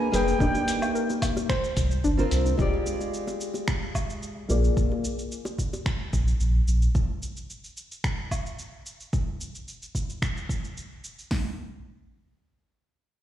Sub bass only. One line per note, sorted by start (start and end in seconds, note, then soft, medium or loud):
0.14 0.34 F1 medium
0.41 0.51 D#1 loud
1.77 1.97 C2 medium
2.05 2.25 G1 loud
2.32 2.52 C2 medium
2.59 2.69 F1 medium
4.50 4.70 A#1 medium
4.77 4.87 A#1 loud
6.13 6.34 A#1 loud
6.41 6.61 A#1 medium
6.68 6.88 A#1 medium